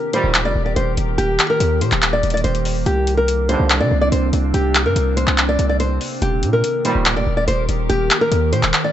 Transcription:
0.00 2.83 D#3 medium
0.00 8.92 A#3 medium
0.00 2.83 G4 medium
0.00 0.11 A#4 medium
0.00 2.83 A#4 medium
0.13 0.53 A#2 loud
0.13 0.53 D#3 loud
0.13 0.53 G3 loud
0.13 0.43 C5 medium
0.13 closed hi-hat medium
0.24 0.46 D1 loud
0.34 clap loud
0.34 closed hi-hat medium
0.45 0.55 F1 loud
0.45 0.61 D5 medium
0.55 0.76 D#1 loud
0.66 0.74 D5 medium
0.76 0.97 D#1 loud
0.76 0.93 C5 medium
0.76 closed hi-hat medium
0.97 1.18 D#1 loud
0.97 closed hi-hat medium
1.18 1.38 D#1 loud
1.18 1.48 G4 loud
1.18 closed hi-hat medium
1.39 clap loud
1.39 closed hi-hat medium
1.50 1.79 A#4 medium
1.60 1.83 D#2 loud
1.60 closed hi-hat medium
1.81 1.91 A#2 loud
1.81 2.11 C5 medium
1.81 closed hi-hat medium
1.92 2.22 D#1 loud
1.92 clap medium
1.92 closed hi-hat soft
2.02 clap loud
2.02 closed hi-hat medium
2.13 2.29 D5 medium
2.23 2.43 D#1 loud
2.23 closed hi-hat medium
2.30 2.42 D5 medium
2.30 closed hi-hat medium
2.37 closed hi-hat medium
2.44 2.85 D#1 loud
2.44 2.84 C5 medium
2.44 closed hi-hat medium
2.55 closed hi-hat soft
2.65 open hi-hat medium
2.86 3.57 C2 loud
2.86 6.19 C3 medium
2.86 6.19 C4 medium
2.86 6.19 D4 medium
2.86 3.16 G4 loud
2.86 closed hi-hat medium
3.07 closed hi-hat medium
3.17 3.47 A#4 medium
3.28 closed hi-hat medium
3.49 3.89 D#2 loud
3.49 3.89 G2 loud
3.49 3.89 D3 loud
3.49 3.79 C5 medium
3.49 closed hi-hat medium
3.60 3.82 C2 loud
3.70 clap loud
3.70 closed hi-hat medium
3.80 3.91 C3 loud
3.80 3.97 D5 medium
3.91 4.11 C2 loud
4.01 4.10 D5 medium
4.12 4.32 C2 loud
4.12 4.28 C5 medium
4.12 closed hi-hat medium
4.33 4.53 C2 loud
4.33 closed hi-hat medium
4.54 4.87 C2 loud
4.54 4.84 G4 loud
4.54 closed hi-hat medium
4.75 clap loud
4.75 closed hi-hat medium
4.85 4.95 G2 loud
4.85 5.15 A#4 medium
4.96 5.26 C2 loud
4.96 closed hi-hat medium
5.17 5.46 C5 medium
5.17 closed hi-hat medium
5.27 5.58 C2 loud
5.27 clap medium
5.38 clap loud
5.38 closed hi-hat medium
5.49 5.65 D5 medium
5.59 5.99 C2 loud
5.59 closed hi-hat medium
5.69 5.78 D5 medium
5.80 6.19 C5 medium
5.80 closed hi-hat medium
6.01 open hi-hat medium
6.22 6.44 D#1 loud
6.22 8.92 D#3 medium
6.22 8.92 G4 medium
6.22 6.51 G4 loud
6.22 8.92 A#4 medium
6.22 closed hi-hat medium
6.43 6.63 A#2 loud
6.43 closed hi-hat medium
6.53 6.83 A#4 medium
6.64 closed hi-hat medium
6.85 7.25 A#2 medium
6.85 7.25 D#3 loud
6.85 7.25 G3 loud
6.85 7.14 C5 medium
6.85 closed hi-hat medium
6.95 7.18 D1 loud
7.06 clap loud
7.06 closed hi-hat medium
7.16 7.26 F1 loud
7.16 7.33 D5 medium
7.27 7.47 D#1 loud
7.37 7.45 D5 medium
7.48 7.68 D#1 loud
7.48 7.64 C5 medium
7.48 closed hi-hat medium
7.69 7.89 D#1 loud
7.69 closed hi-hat medium
7.89 8.10 D#1 loud
7.89 8.19 G4 loud
7.89 closed hi-hat medium
8.11 clap loud
8.11 closed hi-hat medium
8.21 8.51 A#4 medium
8.32 8.54 D#2 loud
8.32 closed hi-hat medium
8.53 8.63 A#2 loud
8.53 8.82 C5 medium
8.53 closed hi-hat medium
8.63 8.73 D#1 loud
8.63 clap medium
8.63 closed hi-hat soft
8.74 clap loud
8.74 closed hi-hat medium
8.84 8.92 D5 medium

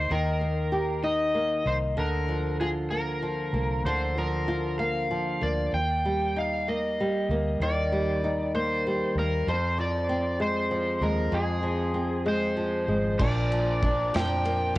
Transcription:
0.00 0.41 A#3 soft
0.00 1.02 D#4 soft
0.00 0.71 G4 soft
0.00 0.15 C5 medium
0.10 1.62 D#2 medium
0.10 1.96 D#3 medium
0.10 1.07 A#4 medium
0.41 1.34 A#3 soft
0.72 2.03 G4 soft
1.03 1.65 D#4 soft
1.03 1.68 D#5 medium
1.34 2.91 A#3 soft
1.66 1.95 C2 medium
1.66 2.03 D#4 soft
1.66 1.75 C5 medium
1.97 3.49 D2 medium
1.97 3.84 D3 medium
1.97 2.60 A#4 medium
2.28 3.21 F3 soft
2.61 4.47 F4 medium
2.61 2.69 G#4 medium
2.91 3.54 A#3 soft
2.91 3.86 A#4 medium
3.22 4.16 F3 soft
3.53 3.82 C2 medium
3.53 4.79 A#3 soft
3.84 5.37 D2 medium
3.84 5.73 D3 medium
3.84 4.17 C5 medium
4.18 5.09 F3 soft
4.18 4.75 A#4 medium
4.48 5.79 F4 soft
4.79 5.41 A#3 soft
4.79 5.43 F5 medium
5.11 5.79 F3 soft
5.41 5.71 D2 medium
5.41 6.68 A#3 soft
5.41 5.71 D5 medium
5.73 7.25 D#2 medium
5.73 6.38 G5 medium
6.05 6.98 G3 soft
6.36 8.23 D#4 soft
6.36 6.69 F5 medium
6.68 7.30 A#3 soft
6.68 7.63 D#5 medium
7.00 7.91 G3 soft
7.29 7.58 D2 medium
7.29 8.54 A#3 soft
7.60 9.12 D#2 medium
7.60 9.47 D#3 medium
7.60 8.55 D5 medium
7.92 8.85 G3 soft
8.24 9.54 D#4 soft
8.55 9.16 A#3 medium
8.55 9.18 C5 medium
8.87 9.54 G3 soft
9.15 9.45 D#2 medium
9.15 9.54 A#3 soft
9.15 9.46 A#4 medium
9.47 10.98 F2 medium
9.47 11.31 F2 medium
9.47 9.80 C5 medium
9.78 10.71 F3 soft
9.78 10.42 D5 medium
10.09 11.93 C4 medium
10.40 11.01 G#3 medium
10.40 11.05 C5 medium
10.71 11.62 F3 medium
11.01 11.30 D#2 medium
11.01 12.24 G#3 soft
11.01 11.34 A#4 medium
11.32 13.20 F2 medium
11.32 12.84 F2 medium
11.32 12.85 G#4 medium
11.63 12.57 F3 soft
11.94 13.20 C4 soft
12.26 12.87 G#3 medium
12.26 13.24 C5 medium
12.57 13.26 F3 soft
12.88 13.18 G#1 medium
12.88 13.26 G#3 soft
13.19 14.10 A#1 medium
13.19 14.78 A#2 medium
13.19 14.78 F3 medium
13.19 14.78 A#3 medium
13.19 14.78 D4 medium
13.19 13.82 D4 medium
13.19 14.78 A#4 medium
13.19 14.78 D5 medium
13.19 14.16 D5 medium
13.19 kick loud
13.19 crash medium
13.52 14.13 F3 medium
13.52 ride soft
13.83 14.78 D4 medium
13.83 kick medium
13.83 ride soft
14.14 14.73 F2 medium
14.14 14.76 F3 medium
14.14 14.77 G5 medium
14.14 snare medium
14.14 ride medium
14.45 14.78 A#3 medium
14.45 ride soft

